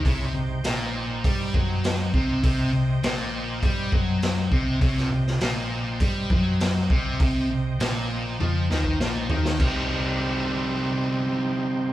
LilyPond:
<<
  \new Staff \with { instrumentName = "Tonewheel organ" } { \time 4/4 \key c \minor \tempo 4 = 100 \tuplet 3/2 { <e' aes' des''>8 <ees' c'' g''>4~ } <ees' c'' g''>2. | <c'' ees'' g''>1 | \tuplet 3/2 { <des'' e'' aes''>8 <c'' ees'' g''>4~ } <c'' ees'' g''>2. | <c'' ees'' g''>1 |
<c' ees' g' c''>1 | }
  \new Staff \with { instrumentName = "Distorted electric guitar" } { \clef bass \time 4/4 \key c \minor c8 c8 bes,4 g8 fis4 c8 | c8 c8 bes,4 g8 fis4 c8 | c8 c8 bes,4 g8 fis4 c8 | c8 c8 bes,4 f8 ees8 bes,8 ees8 |
<c g c' ees' g'>1 | }
  \new Staff \with { instrumentName = "Picked electric bass" } { \clef bass \time 4/4 \key c \minor c,8 c,8 bes,,4 g,8 fis,4 c,8 | c,8 c,8 bes,,4 g,8 fis,4 c,8 | c,8 c,8 bes,,4 g,8 fis,4 c,8 | c,8 c,8 bes,,4 f,8 ees,8 bes,,8 ees,8 |
c,1 | }
  \new DrumStaff \with { instrumentName = "Drums" } \drummode { \time 4/4 <hho bd>4 <hho sn>4 <hho bd>8 bd8 <hho sn>8 bd8 | <hho bd>4 <hho sn>4 <hho bd>8 bd8 <hho sn>8 bd8 | <hho bd>16 sn8 sn16 <hho sn>4 <hho bd>8 bd8 <hho sn>8 bd8 | <hho bd>4 <hho sn>4 tommh8 sn16 bd16 sn8 tomfh16 sn16 |
<cymc bd>4 r4 r4 r4 | }
>>